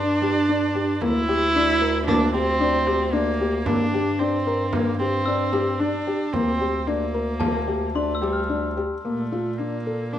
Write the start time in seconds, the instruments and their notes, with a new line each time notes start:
Already playing: bass clarinet G2, felt piano D4, viola D4, glockenspiel C6
0.22 felt piano G4, frame drum
0.49 felt piano D4
0.75 felt piano G4
1.01 bass clarinet D2, felt piano A#3, viola E4, frame drum
1.28 felt piano G4, frame drum
1.56 felt piano D4
1.81 felt piano A#4
2.07 felt piano A#3, viola D4, frame drum
2.34 viola C4, felt piano G4
2.60 felt piano D4, frame drum
2.87 felt piano G4, frame drum
3.13 viola A#3, felt piano D4
3.40 felt piano G4
3.66 bass clarinet G2, felt piano A#3, viola D4, frame drum
3.93 felt piano G4, frame drum
4.19 viola C4, felt piano D4
4.47 felt piano A#4
4.72 viola A#3, felt piano A#3, frame drum
4.99 viola C4, felt piano G4
5.26 felt piano D4, glockenspiel E6, frame drum
5.53 felt piano G4, frame drum
5.79 viola D4, felt piano D4
6.07 felt piano G4
6.33 bass clarinet D2, felt piano A#3, viola C4, frame drum
6.60 felt piano G4, frame drum
6.87 viola A#3, felt piano D4
7.14 felt piano A#4
7.40 felt piano A#3, glockenspiel A5, frame drum
7.67 felt piano G4, frame drum
7.94 viola A3, felt piano D4, glockenspiel C6
8.15 glockenspiel E6
8.21 viola G3, felt piano G4, frame drum
8.33 glockenspiel F6
8.49 felt piano D4, frame drum
8.77 felt piano G4, frame drum
9.04 bass clarinet A#2, viola A3, felt piano A#3
9.32 felt piano F4
9.58 viola A#3, felt piano D4
9.87 felt piano A4
10.13 felt piano A#3, viola D4